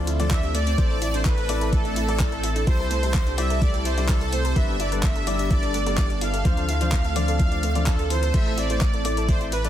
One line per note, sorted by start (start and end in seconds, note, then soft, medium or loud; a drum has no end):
0.00 0.76 D2 medium
0.00 0.76 D3 medium
0.00 0.76 A3 medium
0.00 4.52 C4 medium
0.00 0.76 F4 medium
0.00 8.35 A4 medium
0.00 8.35 A5 medium
0.07 0.16 E4 medium
0.07 open hi-hat loud
0.20 0.29 F3 medium
0.20 0.27 A3 medium
0.20 0.29 D4 medium
0.20 0.29 D5 loud
0.20 closed hi-hat soft
0.31 0.36 E3 loud
0.31 0.42 F3 loud
0.31 0.42 D4 medium
0.31 0.42 D5 loud
0.31 0.55 E5 loud
0.31 0.54 E5 loud
0.31 kick loud
0.31 clap loud
0.31 closed hi-hat medium
0.43 0.51 G3 medium
0.43 closed hi-hat soft
0.55 0.60 A3 medium
0.55 1.01 D5 medium
0.55 open hi-hat loud
0.67 0.75 C4 medium
0.67 closed hi-hat medium
0.78 2.65 A1 medium
0.78 2.65 A3 medium
0.78 0.82 A3 medium
0.78 0.95 A3 loud
0.78 4.52 E4 medium
0.78 0.95 E4 medium
0.78 0.95 C5 loud
0.78 kick loud
0.78 closed hi-hat medium
0.91 0.94 A4 medium
1.02 1.07 E4 medium
1.02 1.14 D5 medium
1.02 1.15 D5 loud
1.02 open hi-hat loud
1.14 1.24 A3 medium
1.14 1.19 D4 medium
1.14 1.24 E4 medium
1.14 1.24 C5 medium
1.14 1.19 C5 medium
1.14 closed hi-hat medium
1.25 1.29 E4 medium
1.25 1.74 B4 medium
1.25 1.72 B4 medium
1.25 kick loud
1.25 clap loud
1.25 closed hi-hat medium
1.38 1.43 A4 medium
1.38 closed hi-hat soft
1.49 1.94 A3 loud
1.49 1.52 A3 medium
1.49 1.94 E4 loud
1.49 1.94 D5 loud
1.49 open hi-hat loud
1.61 1.64 A4 medium
1.61 closed hi-hat soft
1.73 1.78 E4 medium
1.73 2.63 A4 loud
1.73 kick loud
1.73 closed hi-hat medium
1.85 1.90 D4 medium
1.85 closed hi-hat soft
1.96 2.00 E4 medium
1.96 open hi-hat loud
2.09 2.18 A3 medium
2.09 2.18 E4 medium
2.09 2.14 A4 medium
2.09 2.18 D5 loud
2.09 closed hi-hat soft
2.20 2.31 A3 medium
2.20 2.23 A3 medium
2.20 kick loud
2.20 clap loud
2.20 closed hi-hat medium
2.32 2.35 A4 medium
2.32 closed hi-hat soft
2.44 2.49 E4 medium
2.44 open hi-hat loud
2.56 2.61 D4 medium
2.56 closed hi-hat medium
2.67 4.54 C2 medium
2.67 4.54 C3 medium
2.67 2.84 G3 loud
2.67 2.84 E4 medium
2.67 2.71 E4 medium
2.67 6.41 G4 medium
2.67 2.84 C5 loud
2.67 3.38 C5 loud
2.67 3.40 C5 loud
2.67 kick loud
2.67 closed hi-hat medium
2.80 2.85 A4 medium
2.91 2.94 A3 medium
2.91 open hi-hat loud
3.03 3.13 G3 medium
3.03 3.13 E4 medium
3.03 3.06 A4 medium
3.03 3.13 C5 medium
3.03 closed hi-hat medium
3.14 3.20 E4 medium
3.14 kick loud
3.14 clap loud
3.14 closed hi-hat medium
3.27 3.32 D4 medium
3.27 closed hi-hat soft
3.38 3.83 G3 loud
3.38 3.83 E4 loud
3.38 3.41 E4 medium
3.38 3.83 D5 loud
3.38 3.61 E5 loud
3.38 3.62 E5 loud
3.38 open hi-hat loud
3.50 3.55 A4 medium
3.50 closed hi-hat medium
3.62 3.65 A3 medium
3.62 3.85 D5 loud
3.62 3.86 D5 loud
3.62 kick loud
3.62 closed hi-hat medium
3.74 3.77 A4 medium
3.74 closed hi-hat soft
3.85 3.91 E4 medium
3.85 4.08 C5 loud
3.85 4.10 C5 loud
3.85 open hi-hat loud
3.98 4.07 G3 medium
3.98 4.03 D4 medium
3.98 4.07 E4 medium
3.98 4.07 D5 loud
3.98 closed hi-hat medium
4.09 4.20 G3 loud
4.09 4.20 E4 medium
4.09 4.12 E4 medium
4.09 4.32 A4 loud
4.09 4.33 A4 medium
4.09 4.20 D5 loud
4.09 kick loud
4.09 clap loud
4.09 closed hi-hat medium
4.21 4.26 A4 medium
4.21 closed hi-hat soft
4.32 4.36 A3 medium
4.32 4.57 C5 medium
4.32 4.56 C5 loud
4.32 open hi-hat loud
4.45 4.48 A4 medium
4.45 closed hi-hat medium
4.56 6.43 G1 medium
4.56 4.73 G3 loud
4.56 6.43 B3 medium
4.56 4.73 D4 medium
4.56 6.43 D4 medium
4.56 4.62 E4 medium
4.56 4.73 B4 loud
4.56 4.79 E5 loud
4.56 4.80 E5 loud
4.56 kick loud
4.56 closed hi-hat medium
4.68 4.74 D4 medium
4.80 4.83 E4 medium
4.80 4.90 D5 loud
4.80 open hi-hat loud
4.92 5.02 G3 medium
4.92 5.02 D4 medium
4.92 4.97 A4 medium
4.92 5.02 B4 medium
4.92 closed hi-hat medium
5.03 5.07 A3 medium
5.03 5.52 E5 loud
5.03 5.50 E5 loud
5.03 kick loud
5.03 clap loud
5.03 closed hi-hat medium
5.16 5.19 A4 medium
5.16 closed hi-hat soft
5.27 5.71 G3 loud
5.27 5.71 D4 loud
5.27 5.33 E4 medium
5.27 5.71 D5 loud
5.27 open hi-hat loud
5.39 5.44 D4 medium
5.39 closed hi-hat medium
5.51 5.54 E4 medium
5.51 5.97 D5 loud
5.51 kick loud
5.51 closed hi-hat medium
5.63 5.68 A4 medium
5.63 closed hi-hat soft
5.74 5.78 A3 medium
5.74 open hi-hat loud
5.86 5.96 G3 medium
5.86 5.96 D4 medium
5.86 5.90 A4 medium
5.86 5.96 D5 loud
5.86 closed hi-hat medium
5.97 6.09 G3 loud
5.97 6.03 E4 medium
5.97 6.08 D5 loud
5.97 6.09 D5 loud
5.97 kick loud
5.97 clap loud
5.97 closed hi-hat medium
6.10 6.15 D4 medium
6.10 closed hi-hat soft
6.21 6.25 E4 medium
6.21 7.92 F5 loud
6.21 7.86 F5 loud
6.21 open hi-hat loud
6.34 6.39 A4 medium
6.34 closed hi-hat medium
6.45 8.32 D2 medium
6.45 8.32 D3 medium
6.45 6.62 F3 loud
6.45 9.69 A3 medium
6.45 6.48 A3 medium
6.45 9.69 C4 medium
6.45 6.62 D4 medium
6.45 8.32 F4 medium
6.45 6.62 C5 loud
6.45 kick loud
6.45 closed hi-hat medium
6.57 6.60 A4 medium
6.57 closed hi-hat soft
6.69 6.74 E4 medium
6.69 open hi-hat loud
6.81 6.91 F3 medium
6.81 6.86 D4 medium
6.81 6.91 D4 medium
6.81 6.91 C5 medium
6.81 closed hi-hat medium
6.92 6.96 E4 medium
6.92 kick loud
6.92 clap loud
6.92 closed hi-hat medium
7.05 7.10 A4 medium
7.05 closed hi-hat soft
7.16 7.60 F3 loud
7.16 7.19 A3 medium
7.16 7.60 D4 medium
7.16 7.60 D5 loud
7.16 open hi-hat loud
7.28 7.31 A4 medium
7.28 closed hi-hat medium
7.39 7.45 E4 medium
7.39 kick loud
7.39 closed hi-hat medium
7.52 7.57 D4 medium
7.52 closed hi-hat soft
7.63 7.72 A3 medium
7.63 open hi-hat loud
7.75 7.85 F3 medium
7.75 7.83 A3 medium
7.75 7.85 D4 medium
7.75 7.85 D5 loud
7.75 closed hi-hat medium
7.86 8.09 A4 medium
7.86 8.09 A4 loud
7.86 7.95 A4 loud
7.86 7.98 D5 loud
7.86 kick loud
7.86 clap loud
7.86 closed hi-hat medium
7.99 8.04 A4 loud
7.99 closed hi-hat soft
8.10 8.16 E3 medium
8.10 8.35 C5 medium
8.10 8.34 C5 loud
8.10 open hi-hat loud
8.23 8.28 A4 medium
8.23 closed hi-hat medium
8.34 9.69 A1 medium
8.34 8.51 A3 loud
8.34 8.37 A3 medium
8.34 8.51 E4 medium
8.34 9.69 E4 medium
8.34 8.51 C5 loud
8.34 9.69 D5 medium
8.34 8.58 E5 loud
8.34 8.57 E5 loud
8.34 9.69 D6 medium
8.34 kick loud
8.34 closed hi-hat medium
8.34 crash medium
8.46 8.49 A4 medium
8.58 8.63 E4 medium
8.58 9.31 D5 loud
8.58 9.28 D5 loud
8.58 open hi-hat loud
8.70 8.80 A3 medium
8.70 8.80 E4 medium
8.70 8.73 E4 medium
8.70 8.80 C5 medium
8.70 closed hi-hat medium
8.81 kick loud
8.81 clap loud
8.81 closed hi-hat medium
8.94 8.99 A4 medium
8.94 closed hi-hat soft
9.05 9.49 A3 loud
9.05 9.08 A3 medium
9.05 9.49 E4 medium
9.05 9.49 D5 loud
9.05 open hi-hat loud
9.17 9.20 A4 medium
9.17 closed hi-hat medium
9.29 9.34 E4 medium
9.29 9.39 C5 loud
9.29 9.39 C5 medium
9.29 kick loud
9.29 closed hi-hat medium
9.41 9.44 E4 medium
9.41 closed hi-hat soft
9.52 9.56 E4 medium
9.52 9.63 B4 medium
9.52 open hi-hat loud
9.64 9.69 A3 medium
9.64 9.69 E4 medium
9.64 9.69 A4 medium
9.64 9.69 D5 loud
9.64 closed hi-hat medium